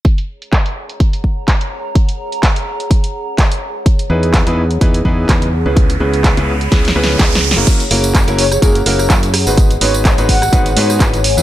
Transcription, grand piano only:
X:1
M:4/4
L:1/16
Q:"Swing 16ths" 1/4=126
K:G#m
V:1 name="Grand piano"
z16 | z16 | z2 [E,B,DEGB]3 [E,B,DEGB] z2 [E,B,DEGB] z [E,B,DEGB]2 [C,B,DEGB] z2 [C,B,CEGB]- | [C,B,CEGB] z [C,B,CEGB]3 [C,B,CEGB] z2 [C,B,CEGB] z [C,B,CEGB]2 [C,B,CEGB] z2 [A,CEFA]- |
[A,CEFA] z [A,CEFA]3 [A,CEFA] z2 [A,CEFA] z [A,CEFA]2 [A,EFA] z2 [G,,B,DFGB]- | [G,,B,DFGB] z [G,,B,DFGB]3 [G,,B,DFGB] z2 [G,,B,DFGB] z [G,,B,DFGB]2 [E,B,DFGB] z2 [E,B,DEGB] |]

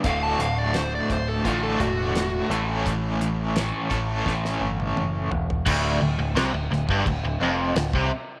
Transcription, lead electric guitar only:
X:1
M:4/4
L:1/16
Q:1/4=86
K:Amix
V:1 name="Lead electric guitar"
=f a f d =c d c A =F A ^F4 z2 | z16 | z16 |]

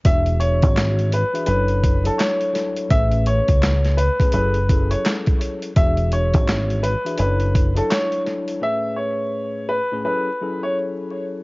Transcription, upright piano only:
X:1
M:4/4
L:1/16
Q:"Swing 16ths" 1/4=84
K:Emix
V:1 name="Upright piano"
e2 c4 B2 B3 A c2 z2 | e2 c4 B2 B3 c z4 | e2 c4 B2 B3 A c2 z2 | e2 c4 B2 B3 c z4 |]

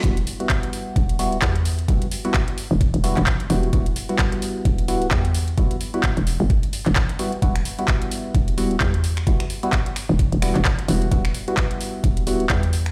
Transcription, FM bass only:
X:1
M:4/4
L:1/16
Q:"Swing 16ths" 1/4=130
K:Em
V:1 name="FM bass" clef=bass
E,,,2 z6 E,,,4 E,,4 | F,,, z6 E,,,2 E,,,2 E,,, z2 E,,,2 | E,,,2 z6 E,,,4 E,,4 | F,,, z4 E,,,2 G,,,2 z2 E,,, z4 |
E,,,2 z6 E,,,4 E,,4 | F,,, z6 E,,,2 E,,,2 E,,, z2 E,,,2 | E,,,2 z6 E,,,4 E,,4 |]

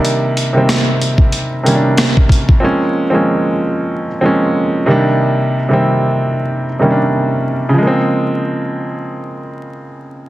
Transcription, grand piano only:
X:1
M:4/4
L:1/16
Q:"Swing 16ths" 1/4=93
K:Bbdor
V:1 name="Grand piano" clef=bass
[C,E,G,B,=D]2 z [C,E,G,B,C]6 z [C,E,G,B,_D=D]4- [C,E,G,B,_D=D] z | [F,A,B,CD]3 [F,A,B,CD]6 z [F,A,B,CD]4 [C,E,G,B,=D]2- | [C,E,G,B,=D]2 z [C,E,G,B,C]6 z [C,E,G,B,_D=D]4- [C,E,G,B,_D=D] z | [D,F,A,B,C]16 |]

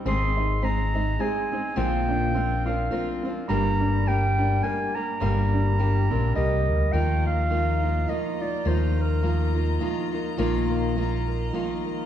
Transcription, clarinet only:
X:1
M:3/4
L:1/8
Q:"Swing" 1/4=104
K:Eb
V:1 name="Clarinet"
c'2 b2 a2 | g3 f2 z | b2 g2 a b- | b4 e2 |
g f3 e d | c B2 z3 | z6 |]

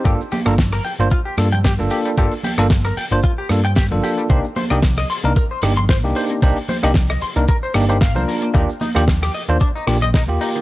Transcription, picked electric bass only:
X:1
M:4/4
L:1/16
Q:"Swing 16ths" 1/4=113
K:Gm
V:1 name="Picked electric bass" clef=bass
G,,, z2 G,,,2 z2 G,,, z2 G,,3 G,,, z2 | G,,, z2 G,,,2 z2 G,,, z2 G,,3 G,,, z2 | C,, z2 C,,2 z2 C,, z2 G,,,3 C,, z2 | C,, z2 C,,2 z2 C,, z2 G,,,3 C,, z2 |
E,, z2 E,,2 z2 E,, z2 B,,,3 E,, z2 |]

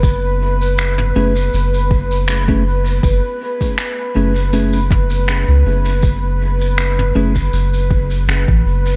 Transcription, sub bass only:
X:1
M:4/4
L:1/16
Q:"Swing 16ths" 1/4=80
K:Bdor
V:1 name="Sub bass" clef=bass
F,,,6 F,,,2 F,,,8 | F,,, z4 z F,,,6- F,,, C,, F,,,2- | F,,,6 F,,,2 F,,,4 F,,, A,,, F,,,2 |]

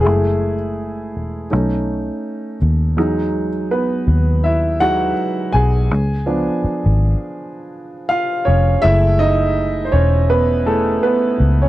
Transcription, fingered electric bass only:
X:1
M:4/4
L:1/16
Q:"Swing 16ths" 1/4=82
K:F#dor
V:1 name="Fingered electric bass" clef=bass
F,,,6 E,,,2 B,,,4 z2 D,,2 | E,,6 D,,6 z2 B,,,2 | C,,4 z G,,,2 z6 z ^E,,,2 | F,,,6 E,,,6 z2 C,,2 |]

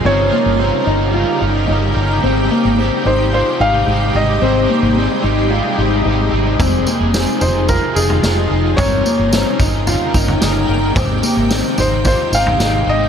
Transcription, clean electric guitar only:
X:1
M:4/4
L:1/8
Q:1/4=110
K:Ab
V:1 name="Clean electric guitar"
C B, C E F E E2 | C B, C E F E E2 | C B, C E F E E2 | C B, C E F E E2 |
C B, C E F E E2 | C B, C E F E E2 |]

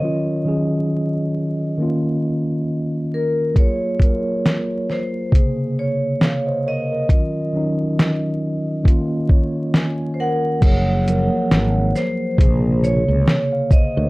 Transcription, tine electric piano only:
X:1
M:4/4
L:1/16
Q:"Swing 16ths" 1/4=68
K:Gblyd
V:1 name="Tine electric piano"
[Bd] z12 z3 | z12 [df] [ce] [Bd] B- | B z8 z d2 a4 | z12 z [df] [ce] [Bd] |]
V:2 name="Tine electric piano"
[E,G,DF]2 [E,G,DA]6 [E,B,DF]6- [E,B,DF] z | [G,B,FA]2 [G,B,FB]6 [C,D,B,A]6- [C,D,B,A] z | [E,G,DF]2 [E,G,DE]6 [E,B,DF]6- [E,B,DF] z | [F,G,B,A]2 [F,G,B,B]6 [C,D,B,A]6- [C,D,B,A] z |]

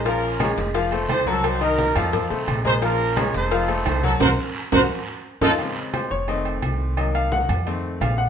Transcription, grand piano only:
X:1
M:4/4
L:1/8
Q:1/4=173
K:Fphr
V:1 name="Grand piano"
[F,Ff]2 [A,AB]2 [F,Ff] [=A,=Ac]2 [G,GB]- | [G,GB] [E,Ee]2 [F,Ff]2 [=A,=Ac]2 [_A,_AB] | [F,Ff]2 [A,AB]2 [F,Ff] [=A,=Ac]2 [G,GB] | [GBc] z2 [GBc] z3 [EF=A] |
z2 c d e z3 | e f g z3 f g |]
V:2 name="Grand piano" clef=bass
z8 | z8 | z8 | z8 |
[D,A,C]3 z [E,=A,C]4 | [E,G,B,]3 z [E,=A,C]3 z |]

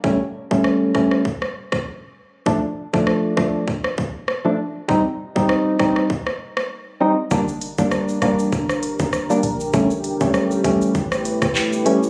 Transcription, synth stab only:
X:1
M:4/4
L:1/16
Q:"Swing 16ths" 1/4=99
K:Gm
V:1 name="Synth stab"
[G,A,^C] z2 [G,A,C]3 [G,A,C]2 z8 | [F,A,D] z2 [F,A,D]3 [F,A,D]2 z4 z [F,A,D] z2 | [G,CE] z2 [G,CE]3 [G,CE]2 z6 [G,CE] z | [G,B,D] z2 [G,B,D]3 [G,B,D]2 z4 z [G,B,D] z2 |
[G,A,^C] z2 [G,A,C]3 [G,A,C]2 z6 [G,A,C] z |]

